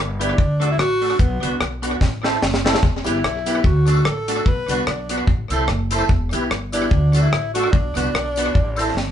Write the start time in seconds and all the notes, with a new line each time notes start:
Already playing: G1
0.19 B3 D4 E4 G4 B4, closed hi-hat
0.38 D2, kick
0.60 A3 D4 F#4 A4, closed hi-hat
0.71 E4
0.78 A1 F#4 A4, cross-stick
1.01 A3 D4 F#4 A4, open hi-hat
1.19 B1 B3, kick, hi-hat pedal
1.41 C2 B3 D4 F#4 B4, closed hi-hat
1.60 B1 F#4 B4, cross-stick
1.82 B3 D4 F#4 B4, closed hi-hat
2.01 A1, kick, snare
2.23 C4 E4 A4 C5, snare
2.42 F#1, snare
2.54 snare
2.64 C4 E4 A4 C5, snare
2.75 snare
2.83 E1, kick
3.04 G1 B3 E4 G4 B4, closed hi-hat, tambourine
3.23 B1 G4 B4, cross-stick
3.46 B3 E4 G4 B4, closed hi-hat, tambourine
3.64 D2 F#4, kick
3.86 A3 D4 F#4 A4, closed hi-hat, tambourine
4.05 A1 A4, cross-stick
4.28 A3 D4 F#4 A4, closed hi-hat, tambourine
4.46 B1 B4, kick
4.68 C2 B3 D4 F#4 B4, closed hi-hat, tambourine
4.87 B1 D4 F#4 B4, cross-stick
5.09 B3 D4 F#4 B4, closed hi-hat, tambourine
5.27 A1, kick
5.50 C2 C4 E4 A4 C5, closed hi-hat, tambourine
5.67 F#1, cross-stick
5.91 C4 E4 A4 C5, closed hi-hat, tambourine
6.09 E1, kick
6.31 B1 B3 E4 G4 B4, closed hi-hat, tambourine
6.50 G1 G4 B4, cross-stick
6.72 B3 D4 E4 G4 B4, closed hi-hat, tambourine
6.91 D2, kick
7.13 A3 D4 F#4 A4, closed hi-hat, tambourine
7.22 E4
7.32 A1, cross-stick
7.54 A3 D4 F#4 A4, closed hi-hat, tambourine
7.71 B1 D4, kick
7.95 C2 B3 D4 F#4 B4, closed hi-hat, tambourine
8.14 B1 F#4 B4, cross-stick
8.36 B3 D4 F#4 B4, closed hi-hat, tambourine
8.55 A1, kick
8.76 C4 E4 A4 C5, closed hi-hat, tambourine
8.95 G1, snare